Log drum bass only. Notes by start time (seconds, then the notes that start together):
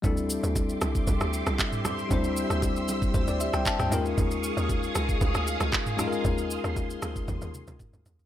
0.04 D2
0.43 D2
0.82 C2
1.07 C2
1.21 D2
1.47 C2
2.11 D2
2.50 D2
2.88 C2
3.14 D2
3.28 D2
3.53 C2
3.79 D2
3.92 D#2
4.18 D#2
4.57 D#2
4.95 C#2
5.21 C#2
5.35 D2
5.60 C#2
6.25 D#2
6.64 D#2
7.02 D2
7.28 D#2
7.42 D#2
7.68 C#2
7.93 D2
8.06 D#2